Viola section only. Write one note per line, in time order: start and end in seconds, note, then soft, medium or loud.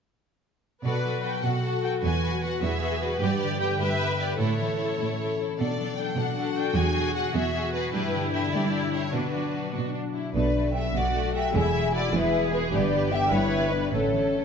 0.84 1.40 B4 soft
1.45 2.63 F#4 soft
2.63 3.21 G#4 medium
3.21 3.78 G4 soft
3.81 4.39 B4 medium
4.40 5.27 A4 soft
6.19 7.91 F#4 medium
7.94 9.11 E4 medium
9.13 10.03 D4 soft
10.95 11.50 F#4 soft
11.55 12.13 E4 medium
12.14 12.72 G#4 medium
12.73 13.30 G4 medium
13.32 13.91 B4 medium
13.91 14.45 A4 soft